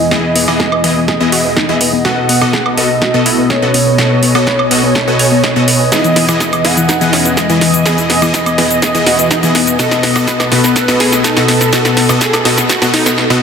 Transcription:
Already playing: E3 B3 G#4 D#5
0.11 E3 B3 E4 G#4 D#5, kick, snare
0.24 B3
0.36 B3, open hi-hat
0.48 E3 B3 E4 G#4 D#5, high woodblock
0.60 G#4, kick, snare
0.72 B3, high woodblock
0.84 E3 B3 E4 G#4 D#5, open hi-hat
0.96 B3
1.08 G#4, kick, snare
1.21 E3 B3 E4 G#4 D#5
1.32 F#4, open hi-hat
1.45 B3
1.57 D#4, kick, snare
1.69 E3 B3 E4 G#4 D#5
1.81 B3, open hi-hat
1.93 B3
2.05 B2 B3 F#4 A4 D#5 F#5, kick, snare
2.17 B3
2.29 B3, open hi-hat
2.41 B2 B3 F#4 A4 D#5, high woodblock
2.53 G#4, kick, snare
2.66 B3, high woodblock
2.77 B2 B3 F#4 A4 D#5, open hi-hat
2.90 B3
3.02 F#4, kick, snare
3.14 B2 B3 F#4 A4 D#5
3.26 E4, open hi-hat
3.38 B3
3.50 C#4 C#5, kick, snare
3.62 B2 B3 F#4 A4 D#5
3.74 B3, open hi-hat
3.87 B3
3.98 B2 B3 F#4 A4 D#5 G#5, kick, snare
4.11 B3
4.23 B3, open hi-hat
4.35 B2 B3 F#4 A4 D#5, high woodblock
4.47 B4, kick, snare
4.59 B3, high woodblock
4.71 B2 B3 F#4 A4 D#5, open hi-hat
4.83 B3
4.95 A4, kick, snare
5.08 B2 B3 F#4 A4 D#5
5.19 C#5, open hi-hat
5.32 B3
5.44 D#5, kick, snare
5.56 B2 B3 F#4 A4 D#5
5.68 B3, open hi-hat
5.80 B3
5.92 E3 B3 D#4 E4 G#4 D#5, kick, snare, closed hi-hat, shaker
6.04 E3, closed hi-hat, shaker
6.16 E3, snare, open hi-hat
6.29 E3 B3 E4 G#4 D#5, closed hi-hat, high woodblock, shaker
6.40 E4, kick, snare, closed hi-hat, shaker
6.53 E3, closed hi-hat, high woodblock, shaker
6.65 E3 B3 E4 G#4 D#5 F#5, snare, open hi-hat
6.77 E3, closed hi-hat, shaker
6.89 D#4, kick, snare, closed hi-hat, shaker
7.01 E3 B3 E4 G#4 D#5, closed hi-hat, shaker
7.13 C#4, snare, open hi-hat
7.25 E3, closed hi-hat, shaker
7.37 G#3 D#5, kick, snare, closed hi-hat, shaker
7.50 E3 B3 E4 G#4 D#5, closed hi-hat, shaker
7.61 E3, snare, open hi-hat
7.74 E3, closed hi-hat, shaker
7.86 E3 B3 E4 G#4 D#5, kick, snare, closed hi-hat, shaker
7.98 B3, closed hi-hat, shaker
8.10 B3, snare, open hi-hat
8.22 E3 B3 E4 G#4 D#5, closed hi-hat, high woodblock, shaker
8.34 G#4, kick, snare, closed hi-hat, shaker
8.46 B3, closed hi-hat, high woodblock, shaker
8.58 E3 B3 E4 G#4 D#5, snare, open hi-hat
8.70 B3, closed hi-hat, shaker
8.82 G#4, kick, snare, closed hi-hat, shaker
8.95 E3 B3 E4 G#4 D#5, closed hi-hat, shaker
9.06 F#4, snare, open hi-hat
9.19 B3, closed hi-hat, shaker
9.31 D#4, kick, snare, closed hi-hat, shaker
9.43 E3 B3 E4 G#4 D#5, closed hi-hat, shaker
9.55 B3, snare, open hi-hat
9.67 B3, closed hi-hat, shaker
9.79 B2 B3 F#4 A4 D#5, kick, snare, closed hi-hat, shaker
9.91 B3, snare, closed hi-hat, shaker
10.03 B3, snare, open hi-hat
10.16 B2 B3 F#4 A4 D#5, snare, high woodblock, shaker
10.27 B4, kick, snare, closed hi-hat, shaker
10.40 B3, snare, closed hi-hat, high woodblock, shaker
10.52 B2 B3 F#4 A4 B4 D#5, snare, open hi-hat
10.64 B3, snare, closed hi-hat, shaker
10.76 A4, kick, snare, closed hi-hat, shaker
10.88 B2 B3 F#4 A4 D#5, snare, closed hi-hat, shaker
11.00 G#4, snare, open hi-hat
11.12 B3, snare, closed hi-hat, shaker
11.24 D#4 A4, kick, snare, closed hi-hat, shaker
11.37 B2 B3 F#4 A4 D#5, snare, closed hi-hat, shaker
11.48 B3, snare, open hi-hat
11.61 B3, snare, shaker
11.73 B2 B3 F#4 A4 D#5, kick, snare, closed hi-hat, shaker
11.85 B3, snare, closed hi-hat, shaker
11.97 B3, snare, open hi-hat
12.09 B2 B3 F#4 A4 D#5, snare, high woodblock, shaker
12.21 G#4, kick, snare, closed hi-hat, shaker
12.33 B3, snare, closed hi-hat, high woodblock, shaker
12.45 B2 B3 F#4 A4 D#5, snare, open hi-hat
12.58 B3, snare, closed hi-hat, shaker
12.69 F#4, kick, snare, closed hi-hat, shaker
12.82 B2 B3 F#4 A4 D#5, snare, closed hi-hat, shaker
12.94 D#4, snare, open hi-hat
13.06 B3, snare, shaker
13.18 snare
13.30 B2 B3 F#4 A4 D#5, snare

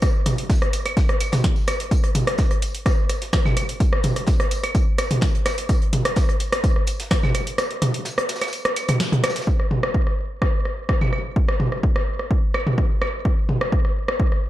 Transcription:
0.02 kick, cross-stick, closed hi-hat, tambourine
0.26 cross-stick, closed hi-hat, mid tom, tambourine
0.38 closed hi-hat
0.50 kick, snare, closed hi-hat, tambourine
0.62 cross-stick, closed hi-hat
0.73 closed hi-hat, tambourine
0.86 cross-stick, closed hi-hat, claves
0.97 kick, snare, closed hi-hat, tambourine
1.09 cross-stick, closed hi-hat
1.20 closed hi-hat, tambourine, claves
1.32 cross-stick, snare, closed hi-hat, mid tom, tambourine
1.44 kick, snare, closed hi-hat
1.56 tambourine
1.67 cross-stick, closed hi-hat, tambourine, claves
1.80 closed hi-hat
1.91 kick, closed hi-hat, tambourine
2.04 cross-stick, closed hi-hat
2.15 closed hi-hat, mid tom, tambourine
2.27 cross-stick, closed hi-hat
2.38 kick, snare, closed hi-hat, tambourine
2.51 cross-stick, closed hi-hat
2.62 closed hi-hat, tambourine
2.75 closed hi-hat
2.86 kick, cross-stick, closed hi-hat, tambourine
3.09 cross-stick, closed hi-hat, tambourine
3.22 snare, closed hi-hat
3.33 kick, cross-stick, snare, closed hi-hat, tambourine
3.45 snare, mid tom, claves
3.57 cross-stick, closed hi-hat, tambourine, claves
3.69 closed hi-hat
3.80 kick, closed hi-hat, tambourine
3.93 cross-stick
4.03 closed hi-hat, mid tom, tambourine
4.16 cross-stick, closed hi-hat
4.27 kick, snare, closed hi-hat, tambourine
4.40 cross-stick, closed hi-hat
4.51 closed hi-hat, tambourine
4.63 cross-stick, closed hi-hat, claves
4.75 kick, closed hi-hat, tambourine
4.98 cross-stick, closed hi-hat, tambourine, claves
5.11 closed hi-hat, mid tom
5.21 kick, cross-stick, snare, closed hi-hat, tambourine
5.35 closed hi-hat
5.46 cross-stick, snare, closed hi-hat, tambourine, claves
5.58 closed hi-hat
5.69 kick, cross-stick, closed hi-hat, tambourine
5.82 closed hi-hat
5.93 closed hi-hat, mid tom, tambourine
6.05 cross-stick, closed hi-hat
6.16 kick, snare, closed hi-hat, tambourine
6.29 cross-stick, closed hi-hat
6.40 closed hi-hat, tambourine
6.52 cross-stick, closed hi-hat
6.64 kick, closed hi-hat, tambourine
6.76 cross-stick
6.87 closed hi-hat, tambourine
7.00 snare, closed hi-hat
7.11 kick, cross-stick, snare, closed hi-hat, tambourine
7.23 snare, mid tom, claves
7.35 cross-stick, closed hi-hat, tambourine, claves
7.47 closed hi-hat
7.58 cross-stick, closed hi-hat, tambourine
7.71 closed hi-hat
7.82 cross-stick, closed hi-hat, mid tom, tambourine
7.94 closed hi-hat
8.05 snare, closed hi-hat, tambourine
8.18 cross-stick, closed hi-hat
8.29 snare, closed hi-hat, tambourine
8.36 snare, tambourine
8.41 cross-stick, snare, closed hi-hat, tambourine, claves
8.47 snare, tambourine
8.53 closed hi-hat, tambourine
8.65 cross-stick, closed hi-hat
8.76 closed hi-hat, tambourine, claves
8.88 cross-stick, closed hi-hat, mid tom, claves
9.00 snare, closed hi-hat, tambourine
9.12 closed hi-hat, mid tom
9.24 cross-stick, snare, closed hi-hat, tambourine, claves
9.30 snare, tambourine
9.35 snare, closed hi-hat, tambourine
9.41 snare, tambourine
9.47 kick
9.60 cross-stick
9.71 mid tom
9.83 cross-stick
9.94 kick
10.07 cross-stick
10.42 kick, cross-stick
10.65 cross-stick
10.89 kick, cross-stick
11.01 mid tom, claves
11.13 cross-stick, claves
11.36 kick
11.48 cross-stick
11.60 mid tom
11.72 cross-stick
11.83 kick
11.96 cross-stick
12.19 cross-stick
12.31 kick
12.54 cross-stick, claves
12.67 mid tom
12.78 kick, cross-stick
13.02 cross-stick, claves
13.25 kick, cross-stick
13.49 mid tom
13.61 cross-stick
13.72 kick
13.85 cross-stick
14.08 cross-stick
14.20 kick
14.32 cross-stick

